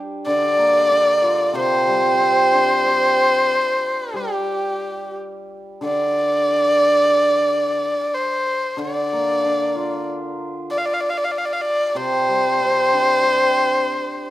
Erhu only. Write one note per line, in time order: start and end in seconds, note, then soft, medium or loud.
0.27 1.57 D5 loud
1.55 4.18 C5 loud
4.16 5.16 G4 medium
5.85 8.16 D5 loud
8.14 8.80 C5 medium
8.79 10.07 D5 medium
10.71 10.79 D5 medium
10.78 10.87 F5 medium
10.85 10.95 D5 medium
10.94 11.02 F5 medium
11.01 11.11 D5 medium
11.10 11.19 F5 medium
11.18 11.26 D5 medium
11.24 11.33 F5 medium
11.32 11.40 D5 medium
11.38 11.47 F5 medium
11.45 11.55 D5 medium
11.53 11.63 F5 medium
11.61 11.98 D5 loud
11.97 14.30 C5 loud